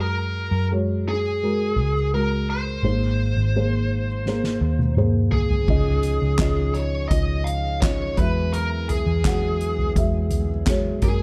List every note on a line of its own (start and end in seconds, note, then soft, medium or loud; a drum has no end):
0.00 0.48 F#2 medium
0.00 0.49 G#3 medium
0.00 0.49 F#4 medium
0.00 0.49 A#4 medium
0.00 0.67 A#4 medium
0.51 1.78 F#2 medium
0.71 1.22 G#3 medium
0.71 1.22 F#4 medium
0.71 1.22 C#5 medium
1.09 2.10 G#4 medium
1.43 1.93 G#3 medium
1.43 1.93 F#4 medium
1.43 1.93 A#4 medium
1.76 2.79 C#2 medium
2.14 2.64 G#3 medium
2.14 2.64 F#4 medium
2.14 2.64 A#4 medium
2.14 2.50 A#4 medium
2.50 4.94 C5 medium
2.83 3.33 G#1 medium
2.83 3.87 G#2 medium
2.83 3.35 A#3 medium
2.83 3.35 G#4 soft
2.83 3.35 C5 medium
3.37 4.57 G#1 medium
3.56 4.07 A#3 medium
3.56 4.06 G#4 medium
3.56 4.07 C5 medium
4.26 4.78 A#3 medium
4.26 4.78 G#4 medium
4.26 4.78 C5 medium
4.26 snare soft
4.44 snare medium
4.61 5.64 D#2 medium
4.79 high tom medium
4.97 5.48 A#3 medium
4.97 5.49 G#4 medium
4.97 5.49 C5 medium
4.97 mid tom medium
5.32 6.79 G#4 medium
5.32 floor tom medium
5.50 floor tom medium
5.68 6.18 C#2 medium
5.68 6.72 C#3 soft
5.68 8.15 F3 medium
5.68 6.20 C#4 medium
5.68 8.15 C#4 medium
5.68 8.15 D#4 medium
5.68 6.20 F4 medium
5.68 10.99 G#4 medium
5.68 6.20 D#5 medium
5.68 kick loud
5.68 crash medium
6.03 closed hi-hat medium
6.22 6.38 C#2 medium
6.38 7.06 C#2 medium
6.38 6.91 C#4 medium
6.38 6.91 F4 medium
6.38 6.91 D#5 medium
6.38 kick loud
6.38 snare loud
6.38 clap medium
6.38 closed hi-hat medium
6.74 7.08 C#5 medium
6.74 closed hi-hat soft
7.09 8.13 C#2 medium
7.09 7.62 C#4 medium
7.09 7.62 F4 medium
7.09 7.46 D#5 medium
7.09 7.62 D#5 medium
7.09 kick loud
7.09 closed hi-hat medium
7.44 7.82 F5 medium
7.44 closed hi-hat medium
7.81 8.18 C#4 medium
7.81 8.18 F4 medium
7.81 8.18 C#5 medium
7.81 8.19 D#5 medium
7.81 kick medium
7.81 snare medium
7.81 clap medium
7.81 closed hi-hat medium
8.17 9.02 E2 medium
8.17 9.22 E3 medium
8.17 11.23 F#3 medium
8.17 9.04 G#3 medium
8.17 11.00 B3 medium
8.17 11.00 E4 medium
8.17 9.04 F#4 medium
8.17 8.53 B4 medium
8.17 9.04 E5 medium
8.17 kick medium
8.17 closed hi-hat medium
8.53 8.89 A#4 medium
8.53 closed hi-hat medium
8.89 9.92 G#4 medium
8.89 closed hi-hat medium
8.89 floor tom medium
9.07 9.23 E2 medium
9.25 9.92 E2 medium
9.25 9.76 G#3 medium
9.25 9.77 F#4 medium
9.25 9.77 F#5 medium
9.25 kick loud
9.25 snare medium
9.25 clap medium
9.25 closed hi-hat medium
9.61 closed hi-hat soft
9.79 floor tom medium
9.96 10.98 E2 medium
9.96 10.48 G#3 medium
9.96 10.48 F#4 medium
9.96 10.48 E5 medium
9.96 kick medium
9.96 closed hi-hat medium
10.31 closed hi-hat medium
10.31 floor tom medium
10.66 11.01 G#3 medium
10.66 11.01 F#4 medium
10.66 11.04 C#5 medium
10.66 kick medium
10.66 snare loud
10.66 clap medium
10.66 closed hi-hat medium
11.02 11.23 F#2 medium
11.02 11.23 G#3 medium
11.02 11.23 A#3 medium
11.02 11.23 C#4 medium
11.02 11.23 F#4 medium
11.02 11.23 G#4 medium
11.02 11.23 A#4 medium
11.02 kick medium
11.02 closed hi-hat medium